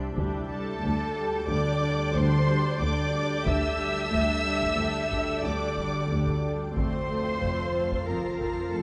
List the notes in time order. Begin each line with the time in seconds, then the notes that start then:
Already playing: C2 G3 D4 G4 D5 E5
0.16 D2 G3 D4 A4 D5 G5 D6 G6 A6, taiko
0.49 G3 D4 A4 A5
0.82 D2 G3 D4
1.15 G3 D4
1.48 D2 G3 D4 D5 D6
1.81 G3 D4
2.14 D2 G3 D4 C5 C6
2.46 G3 D4
2.80 D2 G3 D4 D5 D6
3.13 G3 D4
3.45 D2 G3 D4 A4 D5 E5 G5 E6, taiko
3.78 G3 D4
4.12 D2 G3 D4, taiko
4.45 G3 D4
4.62 taiko
4.77 D2 G3 D4
5.11 G3 D4, taiko
5.44 D2 G3 D4 D5 D6
5.76 G3 D4, taiko
6.09 D2 G3 D4
6.27 taiko
6.43 G3 D4
6.75 F1 F2 A3 C4 F4 C5 F5 C6 C7, taiko
7.09 A3 C4
7.41 F1 F2 A3 C4 A6, taiko
7.75 A3 C4
7.92 taiko
8.07 F1 F2 F3 C4 A#4 A#5
8.40 F3 C4, taiko
8.73 F1 F2 A3 C4 A4 A5